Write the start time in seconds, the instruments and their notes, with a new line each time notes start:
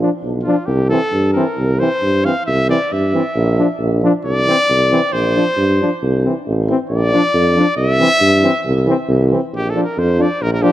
0.00 euphonium F3, trombone D4
0.23 tuba B1
0.43 euphonium F3, trumpet F4
0.48 trombone D4
0.66 tuba C2, trumpet G4
0.89 euphonium E3, trombone C4, trumpet A4
1.12 tuba G2
1.33 euphonium E3, trombone C4, trumpet A#4
1.57 tuba C2
1.79 euphonium E3, trombone C4, trumpet C5
2.02 tuba G2
2.24 euphonium E3, trombone C4, trumpet F5
2.46 tuba C2, trumpet E5
2.69 euphonium E3, trombone C4, trumpet D5
2.92 tuba G2, trumpet E5
3.13 euphonium E3, trombone C4
3.36 tuba A#1
3.58 euphonium F3, trombone D4
3.79 tuba A#1
4.03 euphonium F3, trombone D4
4.24 tuba C2, trumpet D5
4.46 euphonium E3, trombone C4
4.69 tuba C2
4.91 euphonium E3, trombone C4
5.13 tuba A#1, trumpet C5
5.35 euphonium F3, trombone D4
5.57 tuba G2
5.81 euphonium F3, trombone D4
6.03 tuba C2
6.25 euphonium E3, trombone C4
6.47 tuba A1
6.68 euphonium E3, trombone C4
6.90 tuba A#1, trumpet D5
7.12 euphonium F3, trombone D4
7.34 tuba F2
7.56 euphonium F3, trombone D4
7.77 tuba C2, trumpet E5
7.99 euphonium E3, trombone C4
8.21 tuba G2
8.42 euphonium E3, trombone C4
8.65 tuba C2
8.86 euphonium E3, trombone C4
9.09 tuba C2
9.30 euphonium E3, trombone C4
9.53 tuba A#1, trumpet G4
9.70 trumpet A4
9.75 euphonium F3, trombone D4
9.84 trumpet A#4
9.97 tuba F2, trumpet C5
10.18 euphonium F3, trombone D4, trumpet D5
10.41 tuba A#1, trumpet A#4
10.53 trumpet A#4
10.62 euphonium F3, trombone D4, trumpet G4